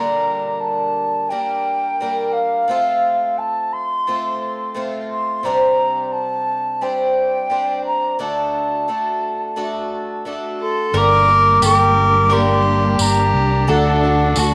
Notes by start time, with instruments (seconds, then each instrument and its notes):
Already playing: twelve-string acoustic guitar G2 D3 G3 A#3 D4 A#4, flute A#5
0.61 flute A5
1.29 twelve-string acoustic guitar G3 A#3 D4 A#4, flute G5
2.00 twelve-string acoustic guitar G3 A#3 D4 A#4
2.33 flute F5
2.68 twelve-string acoustic guitar A3 C4 F4 A4
3.38 flute A5
3.73 flute C6
4.07 twelve-string acoustic guitar A3 C4 F4 A4
4.74 twelve-string acoustic guitar A3 C4 F4 A4
5.11 flute C6
5.43 twelve-string acoustic guitar C3 G3 C4 D4 C5, flute A#5
6.12 flute A5
6.81 twelve-string acoustic guitar G3 C4 D4 C5, flute G5
7.50 twelve-string acoustic guitar G3 C4 D4 C5
7.86 flute A#5
8.19 twelve-string acoustic guitar D3 A3 D4 F#4 A4, flute A5
8.88 twelve-string acoustic guitar A3 D4 F#4 A4
9.56 twelve-string acoustic guitar A3 D4 F#4 A4
10.25 twelve-string acoustic guitar A3 D4 F#4 A4
10.60 fiddle A4, flute C6
10.92 fingered electric bass G1, twelve-string acoustic guitar G2 D3 G3 A#3 G4 A#4, string section G3 A#3 D4, mandolin A#4
10.97 fiddle A#4, flute D6
11.27 twelve-string acoustic guitar G3 A#3 G4 A#4
11.62 fingered electric bass G1, mandolin G4, fiddle A#4, flute D6, tambourine
12.29 twelve-string acoustic guitar G2 D3 G3 A#3 G4 A#4, fiddle G4, mandolin A#4, flute C6
12.99 fingered electric bass G1, fiddle G4, flute A#5, tambourine
13.34 fingered electric bass C2
13.67 fingered electric bass D2, twelve-string acoustic guitar D3 A3 D4 F#4 A4, string section D3 F#4 A4, fiddle D4, mandolin A4, flute F#5
14.03 twelve-string acoustic guitar D4 F#4 A4
14.36 fingered electric bass D2, mandolin F#4, fiddle F#4, flute A5, tambourine